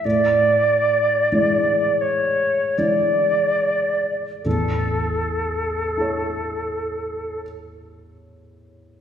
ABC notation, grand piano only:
X:1
M:3/4
L:1/8
Q:1/4=39
K:A
V:1 name="Grand piano"
z6 | z2 [EAc]4 |]
V:2 name="Grand piano" clef=bass
A,,2 [E,G,E]2 [E,G,E]2 | [A,,,E,,]6 |]